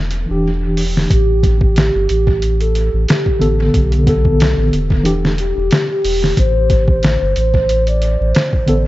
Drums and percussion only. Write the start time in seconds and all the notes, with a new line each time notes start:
0.11 closed hi-hat
0.77 open hi-hat
0.97 snare
1.10 kick, closed hi-hat
1.43 kick, closed hi-hat
1.61 kick
1.76 snare, closed hi-hat
2.09 closed hi-hat
2.27 kick
2.42 closed hi-hat
2.61 closed hi-hat
2.75 closed hi-hat
3.08 snare, closed hi-hat
3.26 kick
3.42 closed hi-hat
3.74 kick, closed hi-hat
3.92 closed hi-hat
4.07 kick, closed hi-hat
4.25 kick
4.40 snare, closed hi-hat
4.73 closed hi-hat
4.90 kick
5.05 closed hi-hat
5.25 snare
5.38 closed hi-hat
5.71 snare, closed hi-hat
6.04 open hi-hat
6.24 snare
6.37 kick, closed hi-hat
6.70 kick, closed hi-hat
6.88 kick
7.03 snare, closed hi-hat
7.36 closed hi-hat
7.54 kick
7.69 closed hi-hat
7.87 closed hi-hat
8.02 closed hi-hat
8.35 snare, closed hi-hat
8.53 kick
8.68 closed hi-hat